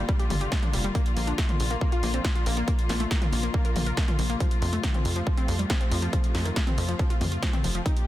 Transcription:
Already playing: D3 G3 A#3 F4
0.09 G3, kick, closed hi-hat
0.19 G4, closed hi-hat
0.30 G1 G3, open hi-hat, mid tom
0.41 G4, closed hi-hat
0.52 G3, kick, snare, closed hi-hat
0.63 D4, closed hi-hat, mid tom
0.73 F1 G3, open hi-hat
0.84 G3, closed hi-hat
0.95 F3 A#3, kick, closed hi-hat
1.06 closed hi-hat
1.16 A#1 A#3, open hi-hat
1.27 D4, closed hi-hat
1.38 A3, kick, snare, closed hi-hat
1.49 F4, closed hi-hat, mid tom
1.60 A#1 A#2, open hi-hat
1.71 A#3, closed hi-hat
1.81 A#3, kick
1.92 F4, closed hi-hat
2.03 A#1 A#3, open hi-hat
2.14 C4, closed hi-hat
2.25 F4, kick, snare, closed hi-hat
2.35 F4, closed hi-hat
2.46 A#1 A#3, open hi-hat
2.57 A#3, closed hi-hat
2.68 A#3, kick, closed hi-hat
2.79 closed hi-hat
2.89 A#1 A#3, snare, open hi-hat
3.00 A3, closed hi-hat
3.11 A#4, kick, snare, closed hi-hat
3.22 F4, closed hi-hat, mid tom
3.32 A#1 A#3, open hi-hat
3.43 A#3, closed hi-hat
3.54 A#3, kick
3.65 A#4, closed hi-hat
3.76 A#1 A#3, open hi-hat, mid tom
3.87 A#4, closed hi-hat
3.97 A#3, kick, snare, closed hi-hat
4.08 F4, closed hi-hat, mid tom
4.19 A#1 A#3, open hi-hat
4.30 A#3, closed hi-hat
4.40 C3 F3 A3, kick, closed hi-hat
4.51 closed hi-hat
4.62 F2 F3, open hi-hat
4.73 A3, closed hi-hat
4.83 D#3, kick, snare, closed hi-hat
4.94 C4, closed hi-hat, mid tom
5.05 F2, open hi-hat
5.16 F3, closed hi-hat
5.27 F3, kick
5.37 C4, closed hi-hat
5.48 F2 F3, open hi-hat
5.59 G3, closed hi-hat
5.70 C4, kick, snare, closed hi-hat
5.81 C4, closed hi-hat
5.91 F2 F3, open hi-hat
6.02 F3, closed hi-hat
6.13 F3, kick, closed hi-hat
6.24 closed hi-hat
6.35 F2 F3, snare, open hi-hat
6.45 D#3, closed hi-hat
6.56 F4, kick, snare, closed hi-hat
6.67 C4, closed hi-hat, mid tom
6.78 F2 F3, open hi-hat
6.88 F3, closed hi-hat
6.99 F3, kick, closed hi-hat
7.10 F4, closed hi-hat
7.21 F2 F3, open hi-hat, mid tom
7.32 F4, closed hi-hat
7.42 F3, kick, snare, closed hi-hat
7.53 C4, closed hi-hat, mid tom
7.64 F1 F3, open hi-hat
7.75 F3, closed hi-hat
7.86 D#3 G3 A#3 D#4 G4, kick, closed hi-hat
7.97 closed hi-hat

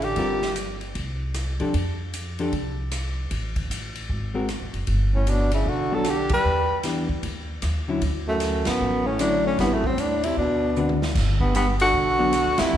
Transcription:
Already playing: A1
0.02 D3 G4, ride
0.16 G1 G3 C4 F4 A#4, kick, ride
0.42 snare
0.56 hi-hat pedal, ride
0.81 ride
0.95 C2, kick, ride
1.34 cross-stick, hi-hat pedal, ride
1.60 C3 F3 D4 G4 A4, ride
1.74 F2, kick, ride
2.14 hi-hat pedal, ride
2.39 F3 D4 G4 A4, ride
2.53 C2, kick, ride
2.91 cross-stick, hi-hat pedal, ride
3.31 A1, kick, ride
3.56 kick, ride
3.70 A1, hi-hat pedal, ride
3.95 ride
4.09 G#1, kick
4.34 G#3 C4 F#4 A#4
4.49 cross-stick, hi-hat pedal, ride
4.61 A#1
4.74 F#1, ride
4.87 G1, kick, ride
5.14 A2 C#4
5.27 B2 D4, hi-hat pedal, ride
5.51 C#3 E4, ride
5.66 B1 D3 F#4, kick
5.91 F#3 B3 D4 A4
6.04 D3, cross-stick, hi-hat pedal, ride
6.10 G4
6.29 G3, kick, ride
6.34 B4
6.45 E2
6.83 E3 B3 D4 G4, snare, hi-hat pedal, ride
7.09 kick
7.23 D#2, kick, ride
7.62 D#2, cross-stick, hi-hat pedal, ride
7.88 D3 F#3 C#4 E4
8.02 D2, kick, ride
8.27 F#2 A3
8.40 snare, hi-hat pedal, ride
8.65 F#2 A2 B3, snare, ride
8.80 A1
9.05 A2 C#4
9.19 A2 D3 F#3 C#4 D4 E4, cross-stick, hi-hat pedal, ride
9.46 A2 C#4
9.59 A1 G2 G3 B3 C4 E4, kick, snare, ride
9.73 F#2 A3
9.84 A2 C4, kick
9.97 D#2 A2 D4, hi-hat pedal, ride
10.24 C3 E4, ride
10.37 D2 B2 D4, kick
10.76 D3 C4 F#4 B4, hi-hat pedal, mid tom
10.89 mid tom
11.02 snare
11.15 G1, kick, snare, crash
11.40 G2 B3, kick
11.55 G2 B3, hi-hat pedal, ride
11.80 D3 F#4, ride
11.94 B1, kick
12.19 F#3 B3 D4
12.33 cross-stick, hi-hat pedal, ride
12.47 D2
12.58 D#2 C3 E4, snare, ride
12.73 E2

